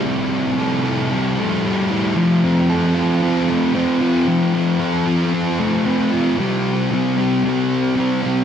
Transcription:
Already playing: G3 A3 E4 A4
0.04 C3
0.31 G3
0.58 A4
0.86 E4
1.11 G3
1.39 A3
1.65 G3
1.90 E4
2.16 F3
2.43 C4
2.70 A4
2.94 F4
3.22 C4
3.49 A3
3.75 C4
4.01 F4
4.27 F3
4.54 C4
4.80 A4
5.06 F4
5.34 C4
5.60 A3
5.86 C4
6.12 F4
6.38 C3 G3 C4
6.91 C3 G3 C4
7.17 G3 C4
7.44 C3 G3 C4
7.96 C3 G3 C4
8.22 G3 C4

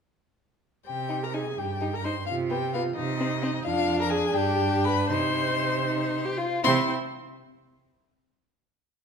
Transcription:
0.86 C3 G4 G5
1.09 D#4
1.23 A#4 A#5
1.34 D#4 G#4 G#5
1.57 G2 G4 G5
1.81 D#4
1.93 A#4 A#5
2.04 D#4 C5 C6
2.26 C3 F4 F5
2.50 B3 G4 G5
2.74 B3 F4 F5
2.96 C3 D#4 D#5
3.20 C4
3.42 C4
3.64 F2 D4 F4 F5
3.99 A#4 A#5
4.10 G#4 G#5
4.34 G2 D4 G4 G5
4.84 B4 B5
5.09 C3 D#4 C5 C6
5.87 D#4
6.25 G4
6.38 F4
6.63 C3 C4 E4 C6

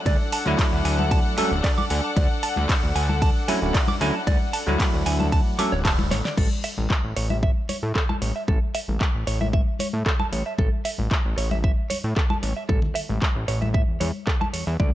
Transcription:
Already playing: D4 A4 F#5
0.06 D2 D5, kick, ride, high conga
0.32 A5, open hi-hat
0.46 D2 F#3 A3 E4, high conga
0.59 kick, clap, ride
0.72 D2
0.85 D2 G#5, open hi-hat
0.99 A5, high conga
1.11 A5, kick, ride
1.37 F#3 A3 C#4 A4 G#5, open hi-hat, high conga
1.52 D1
1.64 D5, kick, clap, ride
1.78 D6, high conga
1.90 D2 G#5, open hi-hat
2.04 A5
2.17 D2 D5, kick, ride, high conga
2.43 A5, open hi-hat
2.56 D2, high conga
2.69 kick, clap, ride
2.83 D2
2.96 D2 G#5, open hi-hat
3.09 A5, high conga
3.22 A5, kick, ride
3.48 F#3 A3 C#4 E4 G#5, open hi-hat, high conga
3.61 D1 F#3 A3 C#4 E4
3.74 D5, kick, clap, ride
3.88 D6, high conga
4.00 D2 F#3 A3 C#4 E4 G#5, open hi-hat
4.15 A5
4.27 D2 D5, kick, ride, high conga
4.53 A5, open hi-hat
4.67 D2 F#3 A3 E4, high conga
4.80 kick, clap, ride
4.94 D2
5.06 D2 G#5, open hi-hat
5.20 A5, high conga
5.32 A5, kick, ride
5.59 F#3 A3 C#4 A4 D6, open hi-hat, high conga
5.72 D1 C#5
5.85 A5, kick, clap, ride
5.99 high conga
6.11 A1 C#5, snare, open hi-hat
6.25 D5, snare
6.38 A1 A4, kick, crash, high conga
6.64 E5, open hi-hat
6.78 A1, high conga
6.90 kick, clap
7.04 A1
7.16 A1 C#5, open hi-hat
7.30 E5, high conga
7.43 E5, kick
7.69 C#5, open hi-hat, high conga
7.83 A2
7.95 A4, kick, clap
8.09 A5, high conga
8.22 A1 C#5, open hi-hat
8.36 E5
8.48 A1 A4, kick, high conga
8.75 E5, open hi-hat
8.88 A1, high conga
9.01 kick, clap
9.15 A1
9.27 A1 C#5, open hi-hat
9.41 E5, high conga
9.53 E5, kick
9.79 C#5, open hi-hat, high conga
9.93 A2
10.06 A4, kick, clap
10.19 A5, high conga
10.32 A1 C#5, open hi-hat
10.46 E5
10.58 A1 A4, kick, high conga
10.85 E5, open hi-hat
10.98 A1, high conga
11.11 kick, clap
11.25 A1
11.38 A1 C#5, open hi-hat
11.51 E5, high conga
11.64 E5, kick
11.90 C#5, open hi-hat, high conga
12.04 A2
12.16 A4, kick, clap
12.30 A5, high conga
12.43 A1 C#5, open hi-hat
12.57 E5
12.69 A1 A4, kick, high conga
12.82 low conga
12.95 E5, open hi-hat
13.09 A1, high conga
13.22 kick, clap
13.36 A1
13.48 A1 C#5, open hi-hat
13.62 E5, high conga
13.74 E5, kick
13.88 E2
14.00 E2 C#5, open hi-hat, high conga
14.27 A4, kick, clap
14.41 A5, high conga
14.53 E2 C#5, open hi-hat
14.67 E2 E5
14.80 D2 D5, kick, high conga

